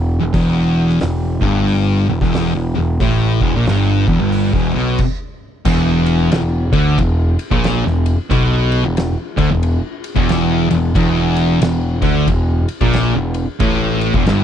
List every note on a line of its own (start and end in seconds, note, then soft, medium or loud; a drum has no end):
0.00 0.19 E1 medium
0.00 0.16 E2 medium
0.20 0.33 E1 medium
0.20 0.32 E2 medium
0.34 0.97 E1 medium
0.34 1.00 E2 loud
0.34 kick loud
0.34 open hi-hat medium
0.89 snare soft
1.00 1.39 E1 medium
1.00 1.34 E2 medium
1.00 snare loud
1.00 open hi-hat medium
1.42 2.04 G1 loud
1.42 2.07 G2 loud
1.42 kick loud
1.67 open hi-hat medium
2.09 2.21 E1 medium
2.09 2.20 E2 medium
2.21 2.52 E1 medium
2.21 2.53 E2 loud
2.21 kick loud
2.21 snare soft
2.34 snare loud
2.34 open hi-hat medium
2.55 2.74 E1 medium
2.55 2.74 E2 medium
2.75 2.99 E1 medium
2.75 2.95 E2 medium
3.00 3.38 A1 medium
3.00 3.40 A2 loud
3.00 kick loud
3.00 open hi-hat medium
3.41 3.53 E1 loud
3.41 3.53 E2 loud
3.41 kick loud
3.54 3.67 A#1 medium
3.54 3.66 A#2 loud
3.66 4.05 G1 medium
3.66 4.07 G2 loud
3.66 snare loud
3.66 open hi-hat medium
4.07 4.19 E1 loud
4.07 4.20 E2 loud
4.07 kick loud
4.20 4.51 G1 medium
4.20 4.53 G2 loud
4.32 open hi-hat medium
4.53 4.73 E1 medium
4.53 4.73 E2 loud
4.53 kick loud
4.74 4.98 B1 medium
4.74 4.99 B2 medium
4.98 kick loud
4.98 crash loud
5.65 6.28 E1 medium
5.65 6.30 E2 loud
5.65 kick loud
5.65 crash loud
6.06 ride medium
6.31 6.70 E1 medium
6.31 6.64 E2 medium
6.31 snare loud
6.31 ride loud
6.72 6.96 D2 loud
6.72 6.97 D3 loud
6.72 kick loud
6.72 ride medium
6.98 7.36 E1 medium
6.98 7.31 E2 medium
6.98 kick medium
6.98 ride loud
7.39 ride medium
7.51 7.83 A#1 loud
7.51 7.83 A#2 loud
7.51 kick loud
7.64 snare loud
7.64 ride loud
7.85 8.16 E1 medium
7.85 8.13 E2 medium
7.85 snare soft
8.06 ride medium
8.31 8.80 B1 medium
8.31 8.84 B2 loud
8.31 kick loud
8.31 ride loud
8.72 ride medium
8.84 9.15 E1 medium
8.84 9.10 E2 medium
8.97 snare loud
8.97 ride loud
9.38 9.49 D2 loud
9.38 9.50 D3 loud
9.38 kick loud
9.38 ride medium
9.51 9.81 E1 medium
9.51 9.75 E2 medium
9.63 ride loud
10.04 ride medium
10.15 10.66 E1 medium
10.15 10.68 E2 loud
10.15 kick loud
10.29 snare loud
10.29 ride loud
10.70 10.94 E1 medium
10.70 10.90 E2 medium
10.70 ride medium
10.95 11.58 E1 loud
10.95 11.60 E2 loud
10.95 kick loud
10.95 ride loud
11.36 ride medium
11.62 12.00 E1 medium
11.62 11.94 E2 medium
11.62 snare loud
11.62 ride loud
12.02 12.26 D2 loud
12.02 12.27 D3 loud
12.02 kick loud
12.02 ride medium
12.27 12.66 E1 medium
12.27 12.61 E2 medium
12.27 kick medium
12.27 ride loud
12.68 ride medium
12.81 13.12 A#1 loud
12.81 13.13 A#2 loud
12.81 kick loud
12.93 snare loud
12.93 ride loud
13.15 13.45 E1 medium
13.15 13.43 E2 medium
13.34 ride medium
13.60 14.10 A1 loud
13.60 14.14 A2 loud
13.60 kick loud
13.60 ride loud
14.01 ride medium
14.14 14.26 E1 medium
14.14 14.26 E2 loud
14.14 kick loud
14.26 14.44 G1 loud
14.26 14.44 G2 loud
14.26 snare loud
14.26 ride loud